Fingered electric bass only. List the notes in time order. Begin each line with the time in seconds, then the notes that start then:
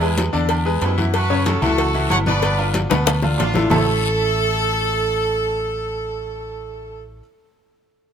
Already playing: E2
0.34 E2
0.82 F#2
1.62 C#2
2.11 G1
2.91 D2
3.40 A1
3.71 A1